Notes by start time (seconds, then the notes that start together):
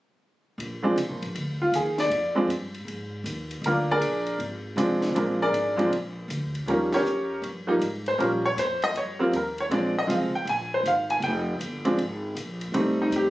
0.58 A#1, ride
0.83 F3 G#3 C4 D4
0.96 C2, hi-hat pedal, ride
1.09 A#1
1.22 G#1, ride
1.35 D2, ride
1.62 F4
1.72 D#2 G#4, hi-hat pedal, ride
1.98 D5, snare, ride
2.10 F2, ride
2.35 F3 G#3 C4 D4
2.47 G2, hi-hat pedal, ride
2.74 ride
2.85 G#2, ride
3.24 D#2, hi-hat pedal, ride
3.51 ride
3.62 D2, ride
3.66 A#3 D4 F4 A#4
3.91 D4 G#4 A#4 D5
4.00 A#1, hi-hat pedal, ride
4.27 ride
4.38 G#1, ride
4.76 C2 F3 G#3 C4 D4, hi-hat pedal, ride
5.02 snare, ride
5.13 A#1 F3 G#3 C4 D4, ride
5.18 A#3 F4 A#4
5.42 D4 G#4 A#4 D5
5.51 G#1, hi-hat pedal, ride
5.76 F3 G#3 C4 D4, ride
5.91 A#1, ride
6.28 D2, hi-hat pedal, ride
6.55 ride
6.66 D#2 F3 G3 A#3 C#4 G4 A#4, ride
6.70 D#4
6.93 C#4 G4 A#4 C#5, snare, ride
7.04 F2, hi-hat pedal
7.42 G2, ride
7.67 F3 G3 A#3 D#4
7.79 G#2, hi-hat pedal, ride
8.06 C5, ride
8.18 A#2 F3 G3 A#3 C#4 A#4, ride
8.46 C#5
8.56 F2 C5, hi-hat pedal, ride
8.82 D#5, ride
8.94 G2 C#5, ride
9.19 F3 G3 A#3 C4 F4
9.32 D#2, hi-hat pedal, ride
9.36 A#4
9.58 C#5, ride
9.70 A#1 F3 G#3 C4 D4, ride
9.74 D5
9.99 D#5
10.07 C2 F3 G#3 C4 F4, hi-hat pedal, ride
10.11 F5
10.32 G5, muted upright bass stroke
10.45 A#1, ride
10.49 G#5
10.74 C5
10.83 G#1, hi-hat pedal, ride
10.87 F5
11.10 G#5, ride
11.20 F1 G5, ride
11.59 G1, hi-hat pedal, ride
11.85 F3 G#3 C4 D4, ride
11.97 G#1, ride
12.35 A#1, hi-hat pedal, ride
12.61 ride
12.72 C2 G3 A3 C4 D#4, ride
13.02 D#4
13.11 F2, hi-hat pedal, ride
13.16 G4